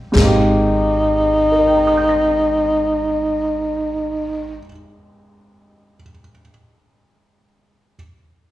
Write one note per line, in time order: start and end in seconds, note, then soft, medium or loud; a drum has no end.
0.00 0.16 G3 soft
0.00 0.16 A#3 soft
0.00 0.16 C4 soft
0.00 0.17 C#4 soft
0.00 0.16 D#4 soft
0.00 0.17 F4 soft
0.00 0.17 G4 soft
0.12 4.57 G#1 medium
0.12 4.58 G#2 medium
0.12 4.61 G#3 medium
0.12 kick medium
0.16 4.64 A#3 medium
0.16 snare medium
0.16 china medium
0.21 4.67 C4 soft
0.21 4.63 D#4 medium
0.21 4.70 G4 medium
1.52 5.94 A#4 soft
1.60 6.01 D#5 soft
1.67 6.09 G5 soft
1.77 6.19 A#5 soft
1.87 6.29 D#6 soft
1.97 6.39 G6 soft
2.09 6.51 A#6 soft